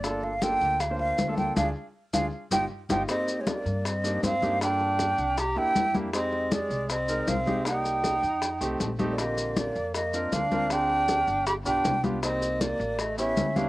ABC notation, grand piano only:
X:1
M:4/4
L:1/16
Q:1/4=158
K:Gm
V:1 name="Grand piano"
[B,DFA]3 z [B,DFA]4 z [B,DFc]3 z [B,DFA]3 | [DF_A]2 z4 [DFA]2 z2 [EFG]2 z2 [EFG]2 | [K:Cm] [B,CEG]6 z4 [B,DEG]3 z [B,DEG] z | [B,DF=A]6 z4 [B,D=EG]3 z [B,DEG] z |
[A,CEG]6 z4 [A,CEB]3 z [A,CEG] z | [B,EGd]6 z4 [=A,CEG]3 z [A,CEG] z | [D,CFG]6 z4 [CDFB]3 z [CDFB] z | [CDFA]6 z4 [=B,DFG]3 z [B,DFG] z |
[B,CEG]6 z4 [=B,^C=EG]3 z [B,CEG] z |]